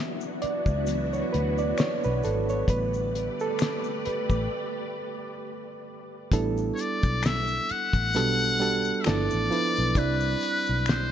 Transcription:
Already playing: E3 F#3 B3 D4 E4 F#4 E5
0.21 shaker
0.42 D5, muted fingered electric bass stroke, closed hi-hat
0.66 C#2, kick, shaker
0.86 E3 F#3 B3, closed hi-hat, shaker
1.13 C#5, shaker
1.33 D2 B4, closed hi-hat
1.58 D5, shaker
1.78 C#5, finger snap, snare, closed hi-hat, shaker
2.04 B1 B4, shaker
2.23 G#1 A4, closed hi-hat, shaker
2.49 C#5, shaker
2.68 A1 D3 G3 A3 B3 G4 B4 D5, kick, closed hi-hat, shaker
2.94 shaker
3.15 closed hi-hat
3.40 A4, shaker
3.59 finger snap, snare, closed hi-hat, shaker
3.84 shaker
4.05 B4, muted fingered electric bass stroke, closed hi-hat
4.30 A1, kick, shaker
6.32 A1 G3 B3 D4 E4 A4, kick, closed hi-hat, shaker
6.57 shaker
6.75 C#5, shaker
6.79 D5, closed hi-hat
7.03 B1, kick, shaker
7.23 E5, finger snap, snare, closed hi-hat, shaker
7.48 shaker
7.69 F#5, muted fingered electric bass stroke, closed hi-hat
7.93 A1, kick, shaker
8.13 B1 G3 B3 D4 F#4 A4, closed hi-hat, shaker
8.40 shaker
8.58 G3 B3 D4 F#4 A4, closed hi-hat, shaker
8.85 shaker
9.01 F3 E5, finger snap, shaker
9.06 G1 B3 D4 E4 A4 D5, snare, closed hi-hat
9.31 A1, shaker
9.50 F3 B3 D4 E4 B4, closed hi-hat
9.76 B1, shaker
9.95 C2 G3 C4 D4 E4 B4 D5, kick, closed hi-hat, shaker
10.20 shaker
10.40 closed hi-hat, shaker
10.66 B1, shaker
10.86 C5, finger snap, snare, closed hi-hat, shaker

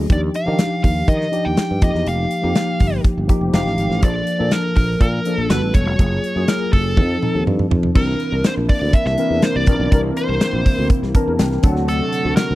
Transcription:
Already playing: F#3 A#3 F4 G#4
0.10 D#2 F3 D4 D#4 G4 D5, kick, closed hi-hat
0.34 F5, closed hi-hat
0.46 D#3 F3 D4 D#4 G4
0.59 snare, closed hi-hat
0.84 D#2 F5, kick, open hi-hat
1.08 D#3 D#5, kick, closed hi-hat
1.21 snare
1.32 F3 D4 D#4 G4, closed hi-hat
1.45 D#2 G5
1.57 snare, closed hi-hat
1.71 G2
1.81 F2 F3 A#3 D#4 G4 D#5, kick, closed hi-hat
1.95 E2, snare
2.06 F1 F5, closed hi-hat
2.31 closed hi-hat
2.42 F2 F3 A#3 D#4 G4
2.55 snare, closed hi-hat
2.80 G1, kick, open hi-hat
3.04 kick, closed hi-hat
3.18 G1
3.28 F3 A#3 D#4 G4, kick, closed hi-hat
3.41 F1
3.53 F1 F3 A3 D#4 G4 F5, snare, closed hi-hat
3.66 A1, snare
3.78 G#1, closed hi-hat
3.90 A1, snare
4.02 A#1 F3 A#3 D4 A4 D5, kick, closed hi-hat
4.27 closed hi-hat
4.39 A#2 F3 A#3 D4 A4
4.51 A#4, snare, closed hi-hat
4.75 A#1 A#4, kick, open hi-hat
5.01 A#2 A#4, kick, closed hi-hat
5.25 F3 A#3 D4 A4, closed hi-hat
5.38 A#1 A4
5.50 G1 G3 B3 F#4 A4 B4, snare, closed hi-hat
5.62 A1
5.74 E1 C#5, kick, closed hi-hat
5.87 F1
5.99 F#1 F#3 A#3 F4 G#4, kick, closed hi-hat
6.24 closed hi-hat
6.36 F#2 F#3 A#3 F4 G#4
6.48 A#4, snare, closed hi-hat
6.73 F#1 A4, kick, open hi-hat
6.97 F2 F3 C4 D#4 A4, kick, high tom
7.22 F3 C4 D#4 A4, mid tom
7.35 D#2
7.47 G2, mid tom
7.59 mid tom
7.71 F2, floor tom
7.83 floor tom
7.94 C2 C3 E3 A#3 C4 D4 E4 A#4, kick, crash
8.20 closed hi-hat
8.32 C2
8.44 C5, snare, closed hi-hat
8.57 A#1
8.69 D5, kick, open hi-hat
8.82 D2
8.93 E5, kick, closed hi-hat
9.06 C2 E5, snare
9.18 E3 C4 D4 A#4, closed hi-hat
9.30 E2
9.42 C5, snare, closed hi-hat
9.56 C2 D5
9.66 A#1 E3 C4 D4 A#4, kick, closed hi-hat
9.80 B1
9.92 C2 E3 C4 D4 A#4 D5, kick, closed hi-hat
10.17 C5, closed hi-hat
10.29 C2
10.41 snare, closed hi-hat
10.53 A#1
10.66 kick, open hi-hat
10.79 D2
10.90 kick, closed hi-hat
11.03 C2, snare
11.14 E3 C4 D4 A#4 A5, kick, closed hi-hat
11.28 E2
11.39 C2 G5, snare, closed hi-hat
11.52 snare
11.63 D2 D3 F#3 A3 C4 D4 F#4 A4 F#5, kick, closed hi-hat
11.76 snare
11.88 A4, closed hi-hat
12.12 closed hi-hat
12.25 D2
12.36 A#4, snare, closed hi-hat
12.51 D2

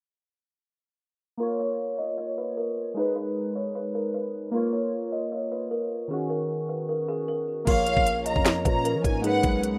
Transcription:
1.37 A#3 F4 A#4
1.42 C#5
1.59 C#5
1.99 D#5
2.18 C#5
2.38 B4
2.57 A#4
2.94 G#3 D#4 G#4
2.99 B4
3.16 B4
3.56 C#5
3.75 B4
3.95 A#4
4.14 B4
4.51 A#3 F4 A#4
4.56 C#5
4.73 C#5
5.12 D#5
5.32 C#5
5.52 B4
5.71 A#4
6.08 D#3 C#4 G#4
6.13 F#4
6.30 A#4
6.69 B4
6.89 A#4
7.08 G#4
7.28 A#4
7.65 A#1 F3 A#3 C#4 F4 A#4 F5, kick, closed hi-hat, crash
7.70 C#5
7.86 C#5, closed hi-hat
7.97 A#1, kick
8.07 closed hi-hat
8.26 D#5 A#5, closed hi-hat
8.36 F2, kick
8.45 C#5, finger snap, snare, closed hi-hat
8.65 A#2 B4 A#5, kick, closed hi-hat
8.85 A#4, closed hi-hat
8.95 F3
9.04 G#2 G#5, kick, closed hi-hat
9.22 G#3 B3 D#4 G#4 F#5, closed hi-hat
9.26 B4
9.43 B1 B4, kick, closed hi-hat
9.63 closed hi-hat
9.73 D#2

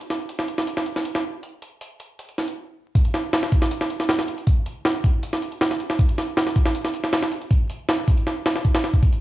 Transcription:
0.01 closed hi-hat
0.10 snare, closed hi-hat
0.29 closed hi-hat
0.39 snare
0.48 closed hi-hat
0.58 snare
0.67 closed hi-hat
0.77 snare
0.86 closed hi-hat
0.96 snare
1.05 closed hi-hat
1.15 snare
1.43 closed hi-hat
1.62 closed hi-hat
1.81 closed hi-hat
2.00 closed hi-hat
2.19 closed hi-hat
2.29 closed hi-hat
2.38 snare, closed hi-hat
2.48 closed hi-hat
2.95 kick, closed hi-hat
3.05 closed hi-hat
3.14 snare, closed hi-hat
3.33 snare, closed hi-hat
3.43 snare
3.52 kick, closed hi-hat
3.62 snare
3.71 closed hi-hat
3.81 snare
3.90 closed hi-hat
4.00 snare
4.09 snare, closed hi-hat
4.19 snare
4.28 closed hi-hat
4.38 closed hi-hat
4.47 kick, closed hi-hat
4.66 closed hi-hat
4.85 snare, closed hi-hat
5.04 kick, closed hi-hat
5.23 closed hi-hat
5.33 snare
5.42 closed hi-hat
5.52 closed hi-hat
5.61 snare, closed hi-hat
5.71 snare
5.80 closed hi-hat
5.90 snare
5.99 kick, closed hi-hat
6.09 closed hi-hat
6.18 snare, closed hi-hat
6.37 snare, closed hi-hat
6.47 snare
6.56 kick, closed hi-hat
6.66 snare
6.75 closed hi-hat
6.85 snare
6.94 closed hi-hat
7.04 snare
7.13 snare, closed hi-hat
7.23 snare
7.32 closed hi-hat
7.42 closed hi-hat
7.51 kick, closed hi-hat
7.70 closed hi-hat
7.89 snare, closed hi-hat
8.08 kick, closed hi-hat
8.18 closed hi-hat
8.27 snare, closed hi-hat
8.46 snare, closed hi-hat
8.56 snare
8.65 kick, closed hi-hat
8.75 snare, closed hi-hat
8.84 snare
8.94 kick, closed hi-hat
9.03 kick, closed hi-hat
9.13 closed hi-hat

